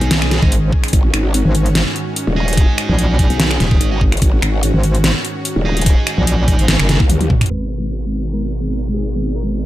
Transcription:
0.00 0.41 B1 loud
0.00 7.47 G#2 medium
0.00 7.47 D#3 medium
0.00 7.47 C#4 medium
0.00 0.40 D#4 medium
0.00 0.40 G#4 medium
0.00 0.91 G#4 medium
0.00 0.40 D#5 loud
0.00 closed hi-hat soft
0.11 snare loud
0.11 closed hi-hat medium
0.22 finger snap medium
0.31 snare medium
0.31 closed hi-hat medium
0.42 0.71 G#1 loud
0.42 0.52 D#4 medium
0.42 0.52 G#4 medium
0.42 0.52 D#5 medium
0.42 kick loud
0.52 closed hi-hat medium
0.73 kick medium
0.84 finger snap medium
0.84 closed hi-hat soft
0.88 closed hi-hat medium
0.93 1.12 G#1 loud
0.93 7.49 F#4 medium
0.93 kick loud
0.93 closed hi-hat medium
1.14 1.43 G#1 loud
1.14 finger snap medium
1.14 closed hi-hat medium
1.34 closed hi-hat medium
1.45 1.84 G#1 loud
1.55 closed hi-hat medium
1.66 closed hi-hat soft
1.75 snare loud
1.75 closed hi-hat medium
1.96 closed hi-hat medium
2.16 closed hi-hat medium
2.27 2.67 D#1 loud
2.37 3.89 D#4 medium
2.37 3.89 G#4 medium
2.37 3.89 D#5 loud
2.48 closed hi-hat soft
2.53 closed hi-hat medium
2.57 kick loud
2.57 closed hi-hat medium
2.78 finger snap medium
2.78 closed hi-hat medium
2.89 3.28 A#1 loud
2.99 closed hi-hat medium
3.19 kick medium
3.19 closed hi-hat medium
3.30 3.59 B1 loud
3.30 closed hi-hat soft
3.40 snare loud
3.40 closed hi-hat medium
3.51 finger snap medium
3.60 3.79 D#1 loud
3.60 snare medium
3.60 closed hi-hat soft
3.71 kick loud
3.81 4.20 G#1 loud
3.81 closed hi-hat medium
3.91 4.01 D#4 medium
3.91 4.01 G#4 medium
3.91 4.01 D#5 medium
4.01 kick medium
4.12 finger snap medium
4.12 closed hi-hat soft
4.17 closed hi-hat medium
4.22 4.41 G#1 loud
4.22 kick loud
4.22 closed hi-hat medium
4.42 4.72 G#1 medium
4.42 finger snap medium
4.42 closed hi-hat medium
4.63 closed hi-hat medium
4.74 5.13 G#1 loud
4.83 closed hi-hat medium
4.95 closed hi-hat soft
5.04 snare loud
5.04 closed hi-hat medium
5.25 closed hi-hat medium
5.45 closed hi-hat medium
5.56 5.95 D#1 loud
5.65 6.98 D#4 medium
5.65 6.98 G#4 medium
5.65 6.98 D#5 loud
5.77 closed hi-hat soft
5.82 closed hi-hat medium
5.86 kick loud
5.86 closed hi-hat medium
6.07 finger snap medium
6.07 closed hi-hat medium
6.18 6.57 A#1 loud
6.27 closed hi-hat medium
6.48 kick medium
6.48 closed hi-hat medium
6.59 6.78 G#1 loud
6.59 closed hi-hat soft
6.68 snare loud
6.68 closed hi-hat medium
6.79 6.98 F#1 loud
6.79 finger snap medium
6.89 snare medium
6.89 closed hi-hat medium
7.00 7.29 D#2 loud
7.00 kick loud
7.10 closed hi-hat medium
7.10 high tom medium
7.21 closed hi-hat soft
7.21 high tom medium
7.30 kick medium
7.30 mid tom medium
7.41 finger snap medium
7.41 closed hi-hat soft
7.41 mid tom medium
7.46 closed hi-hat medium
7.50 9.66 G#1 medium
7.50 9.66 B2 medium
7.50 9.66 D#3 medium
7.50 9.66 B3 medium
7.50 9.66 G#4 medium
7.50 8.25 B4 medium
7.50 downlifter medium
8.33 8.87 A#4 medium
8.94 9.32 G#4 medium
9.35 9.66 A#4 medium

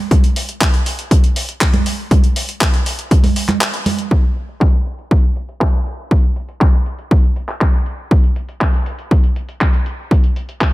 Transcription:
0.11 kick loud
0.11 closed hi-hat medium
0.11 high conga medium
0.24 closed hi-hat soft
0.36 open hi-hat loud
0.49 closed hi-hat soft
0.61 kick loud
0.61 clap loud
0.61 closed hi-hat medium
0.74 closed hi-hat soft
0.86 open hi-hat loud
0.99 closed hi-hat soft
1.11 kick loud
1.11 closed hi-hat medium
1.24 closed hi-hat soft
1.36 open hi-hat loud
1.49 closed hi-hat soft
1.61 kick loud
1.61 clap loud
1.61 closed hi-hat loud
1.74 closed hi-hat soft
1.74 high conga medium
1.86 open hi-hat loud
2.11 kick loud
2.11 closed hi-hat medium
2.11 high conga medium
2.24 closed hi-hat soft
2.36 open hi-hat loud
2.49 closed hi-hat soft
2.61 kick loud
2.61 clap loud
2.61 closed hi-hat medium
2.74 closed hi-hat soft
2.86 open hi-hat loud
2.99 closed hi-hat soft
3.11 kick loud
3.11 closed hi-hat medium
3.24 open hi-hat medium
3.24 high conga medium
3.36 open hi-hat loud
3.49 clap soft
3.49 closed hi-hat soft
3.49 high conga medium
3.61 clap loud
3.61 closed hi-hat loud
3.74 closed hi-hat soft
3.86 open hi-hat loud
3.86 high conga medium
3.99 closed hi-hat soft
4.11 kick loud
4.24 closed hi-hat soft
4.36 closed hi-hat medium
4.49 closed hi-hat soft
4.61 kick loud
4.61 clap loud
4.74 closed hi-hat soft
4.86 closed hi-hat medium
4.99 closed hi-hat soft
5.11 kick loud
5.11 closed hi-hat medium
5.24 closed hi-hat soft
5.36 closed hi-hat medium
5.49 closed hi-hat soft
5.61 kick loud
5.61 clap loud
5.74 closed hi-hat soft
5.86 closed hi-hat soft
6.11 kick loud
6.24 closed hi-hat soft
6.36 closed hi-hat medium
6.49 closed hi-hat soft
6.61 kick loud
6.61 clap loud
6.74 closed hi-hat soft
6.86 closed hi-hat medium
6.99 closed hi-hat soft
7.11 kick loud
7.11 closed hi-hat medium
7.24 closed hi-hat soft
7.36 closed hi-hat medium
7.49 clap soft
7.49 closed hi-hat soft
7.61 kick loud
7.61 clap loud
7.74 closed hi-hat soft
7.86 closed hi-hat soft
8.11 kick loud
8.24 closed hi-hat soft
8.36 closed hi-hat medium
8.49 closed hi-hat soft
8.61 kick loud
8.61 clap loud
8.74 closed hi-hat soft
8.86 closed hi-hat medium
8.99 closed hi-hat soft
9.11 kick loud
9.11 closed hi-hat medium
9.24 closed hi-hat soft
9.36 closed hi-hat medium
9.49 closed hi-hat soft
9.61 kick loud
9.61 clap loud
9.61 closed hi-hat medium
9.74 closed hi-hat soft
9.86 closed hi-hat soft
10.11 kick loud
10.11 closed hi-hat medium
10.24 closed hi-hat soft
10.36 closed hi-hat medium
10.49 closed hi-hat soft
10.61 kick loud
10.61 clap loud
10.61 closed hi-hat medium

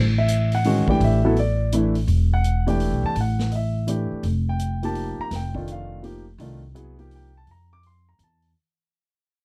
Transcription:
0.00 0.83 A1 medium
0.18 0.51 E5 medium
0.28 closed hi-hat medium
0.52 0.87 F#5 medium
0.52 open hi-hat soft
0.64 0.86 D#3 medium
0.64 0.86 G#3 medium
0.64 0.86 C#4 soft
0.64 0.87 F#4 medium
0.64 open hi-hat soft
0.87 1.19 E3 medium
0.87 1.19 A3 medium
0.87 1.20 D4 soft
0.87 1.20 G4 medium
0.87 1.02 G5 medium
0.87 muted upright bass stroke soft
0.87 kick medium
1.00 2.04 A1 medium
1.00 open hi-hat soft
1.04 1.36 E5 medium
1.24 1.35 F#3 medium
1.24 1.36 B3 medium
1.24 1.36 E4 medium
1.24 1.36 A4 medium
1.36 1.71 D5 medium
1.36 open hi-hat soft
1.72 1.93 E3 medium
1.72 1.94 A3 medium
1.72 1.94 D4 medium
1.72 1.94 E4 medium
1.72 closed hi-hat medium
1.95 open hi-hat soft
2.08 2.88 E1 medium
2.08 open hi-hat soft
2.34 2.66 F#5 medium
2.44 closed hi-hat soft
2.67 3.13 E3 medium
2.67 3.13 A3 medium
2.67 3.13 D4 medium
2.67 3.14 G4 medium
2.67 3.02 G5 medium
2.67 open hi-hat soft
2.80 open hi-hat soft
2.92 3.02 B1 medium
3.03 3.15 E2 medium
3.03 3.17 A5 loud
3.15 4.07 A1 medium
3.15 open hi-hat soft
3.21 3.52 F#5 medium
3.39 snare soft
3.51 3.54 D#5 soft
3.51 open hi-hat soft
3.56 3.87 E5 medium
3.87 4.23 E3 medium
3.87 4.24 A3 soft
3.87 4.24 D4 soft
3.87 4.24 G4 medium
3.87 closed hi-hat medium
4.12 muted upright bass stroke soft
4.23 5.14 F1 medium
4.23 open hi-hat soft
4.49 4.81 G5 medium
4.59 closed hi-hat soft
4.83 5.29 F3 soft
4.83 5.29 A#3 soft
4.83 5.29 D#4 soft
4.83 5.30 G4 medium
4.83 5.17 A5 medium
4.83 open hi-hat soft
4.95 open hi-hat soft
5.19 5.32 A#5 loud
5.19 muted upright bass stroke soft
5.31 6.35 F1 medium
5.31 snare soft
5.31 open hi-hat soft
5.36 5.67 G5 medium
5.55 6.01 D#3 medium
5.55 6.01 A3 medium
5.55 6.01 D4 medium
5.55 6.02 F4 medium
5.55 kick soft
5.67 closed hi-hat soft
5.72 6.03 F5 medium
6.03 6.24 F3 medium
6.03 6.24 A#3 soft
6.03 6.25 D#4 soft
6.03 6.25 G4 medium
6.03 open hi-hat soft
6.38 7.43 C2 medium
6.38 6.60 D#3 medium
6.38 6.61 A3 medium
6.38 6.61 D4 medium
6.38 6.61 F4 medium
6.38 open hi-hat soft
6.74 6.96 F#3 medium
6.74 6.96 B3 medium
6.74 6.96 E4 medium
6.74 6.96 G#4 medium
6.74 closed hi-hat soft
6.98 7.30 F3 medium
6.98 7.30 A#3 medium
6.98 7.30 D#4 medium
6.98 7.30 G4 medium
6.98 open hi-hat soft
7.11 open hi-hat soft
7.16 7.36 G5 medium
7.37 7.48 A5 medium
7.47 8.15 F2 medium
7.47 open hi-hat soft
7.51 7.72 A#5 medium
7.73 7.84 D6 loud
7.83 8.08 C6 medium
7.83 open hi-hat soft
8.09 8.20 A#5 medium
8.19 8.52 E2 medium
8.19 closed hi-hat soft
8.23 8.49 A5 medium
8.42 open hi-hat soft

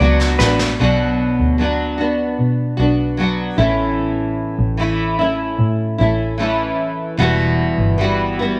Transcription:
0.00 0.32 C#2 medium
0.00 0.39 F#3 medium
0.00 0.40 B3 medium
0.00 0.35 D4 medium
0.00 0.39 D4 medium
0.00 0.36 F#4 medium
0.00 0.38 F#4 medium
0.00 0.37 B4 medium
0.00 0.18 D5 medium
0.00 0.37 F#5 medium
0.20 snare medium
0.39 0.72 A1 medium
0.39 0.79 B3 soft
0.39 0.80 D4 soft
0.39 0.80 F#4 medium
0.39 0.58 B4 medium
0.39 snare medium
0.59 snare medium
0.79 1.39 B1 medium
0.79 1.59 B2 medium
0.79 1.57 F#3 medium
0.79 1.58 B3 medium
0.79 1.59 D4 medium
0.79 1.60 F#4 medium
1.40 2.35 D2 medium
1.58 1.99 F#3 medium
1.58 1.99 B3 medium
1.58 1.99 D4 medium
1.58 1.97 F#4 medium
1.98 2.79 B3 soft
1.98 2.78 D4 soft
1.98 2.76 F#4 soft
2.39 2.72 B2 medium
2.77 3.44 B1 medium
2.77 3.17 B3 soft
2.77 3.19 D4 soft
2.77 3.18 F#4 medium
3.17 3.58 F#3 medium
3.17 3.59 B3 medium
3.17 3.58 D4 medium
3.17 3.57 F#4 medium
3.58 4.41 A1 medium
3.58 4.79 A2 soft
3.58 4.77 E3 medium
3.58 4.78 A3 medium
3.58 4.78 C#4 medium
3.58 4.80 E4 medium
4.59 5.55 A1 medium
4.77 5.18 E3 medium
4.77 5.19 A3 medium
4.77 5.19 C#4 medium
4.77 5.18 E4 medium
5.19 6.00 A3 soft
5.19 5.99 C#4 soft
5.19 5.98 E4 soft
5.59 5.91 A2 medium
5.98 6.65 A1 medium
5.98 6.38 A3 soft
5.98 6.39 C#4 soft
5.98 6.39 E4 medium
6.38 7.18 E3 medium
6.38 7.19 A3 medium
6.38 7.19 C#4 medium
6.38 7.20 E4 medium
7.17 7.68 E1 medium
7.17 7.98 E2 medium
7.17 7.98 B2 medium
7.17 7.97 E3 medium
7.17 7.98 G3 medium
7.17 7.99 B3 medium
7.17 8.01 F#4 medium
7.78 8.60 G1 medium
7.98 8.38 E3 medium
7.98 8.39 G3 medium
7.98 8.39 B3 medium
7.98 8.38 F#4 medium
8.39 8.60 E3 soft
8.39 8.60 G3 soft
8.39 8.60 B3 medium
8.39 8.60 F#4 medium

